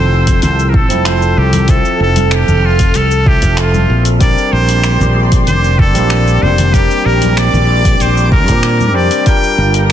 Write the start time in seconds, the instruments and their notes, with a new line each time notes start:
Already playing: fretless electric bass F1, tine electric piano F3 C4 E4 A4, analog synth pad A4 E6, muted trumpet C5
0.27 kick, open hi-hat, cabasa
0.42 fretless electric bass C2, muted trumpet C5, open hi-hat, low conga, cabasa
0.59 cabasa
0.69 muted trumpet A#4
0.74 muted trumpet A4, kick
0.89 fretless electric bass F1, tine electric piano F3 C4 E4 A4, open hi-hat, high conga, cabasa
1.05 muted trumpet C5, finger snap, open hi-hat, cabasa
1.22 cabasa
1.38 fretless electric bass C2, muted trumpet G4
1.53 open hi-hat, high conga, low conga, cabasa
1.68 tine electric piano F3 C4 A4 E5, muted trumpet A4, analog synth pad F6, kick, open hi-hat, cabasa
1.85 cabasa
2.00 fretless electric bass F1, muted trumpet A4
2.16 open hi-hat, high conga, cabasa
2.31 muted trumpet G4, finger snap, open hi-hat, cabasa
2.48 fretless electric bass F1, low conga, cabasa
2.65 muted trumpet F4
2.79 kick, open hi-hat, cabasa
2.94 fretless electric bass C2, muted trumpet A4, open hi-hat, cabasa
3.11 cabasa
3.25 tine electric piano F3 C4 A4 E5, muted trumpet G4, kick
3.42 fretless electric bass F1, kick, open hi-hat, cabasa
3.57 muted trumpet F4, finger snap, open hi-hat, cabasa
3.74 high conga, cabasa
3.90 fretless electric bass A#1
4.05 open hi-hat, cabasa
4.19 tine electric piano G3 C4 D4 A#4, analog synth pad G4 D5 C6, muted trumpet D5, kick, open hi-hat, cabasa
4.38 cabasa
4.52 fretless electric bass A#1, muted trumpet C5
4.69 open hi-hat, cabasa
4.84 finger snap, open hi-hat, cabasa
5.00 fretless electric bass A#1, low conga, cabasa
5.32 kick, open hi-hat, cabasa
5.47 fretless electric bass F1, muted trumpet C5, open hi-hat, low conga, cabasa
5.64 cabasa
5.79 muted trumpet A4, kick
5.94 fretless electric bass A#1, tine electric piano G3 A#3 C4 D4, open hi-hat, high conga, cabasa
6.10 finger snap, open hi-hat, cabasa
6.27 cabasa
6.42 fretless electric bass F1, muted trumpet C5
6.58 open hi-hat, high conga, low conga, cabasa
6.72 tine electric piano G3 C4 D4 A#4, muted trumpet G4, analog synth pad D6, kick, open hi-hat, cabasa
6.91 cabasa
7.06 fretless electric bass A#1, muted trumpet A#4
7.22 open hi-hat, high conga, cabasa
7.37 muted trumpet D5, finger snap, open hi-hat, cabasa
7.53 fretless electric bass A#1, low conga, cabasa
7.85 kick, open hi-hat, cabasa
8.00 fretless electric bass A#1, muted trumpet C5, open hi-hat, cabasa
8.17 cabasa
8.32 muted trumpet A#4, kick
8.47 fretless electric bass A#2, tine electric piano G3 C4 D4 A#4, kick, open hi-hat, low conga, cabasa
8.63 finger snap, open hi-hat, cabasa
8.80 high conga, cabasa
8.94 fretless electric bass F2, tine electric piano G3 C4 D4 C5, muted trumpet D5
9.11 open hi-hat, cabasa
9.25 tine electric piano G3 D4 F4 A#4, analog synth pad F5 A#5, muted trumpet G5, kick, open hi-hat, cabasa
9.44 cabasa
9.58 fretless electric bass G1
9.74 open hi-hat, cabasa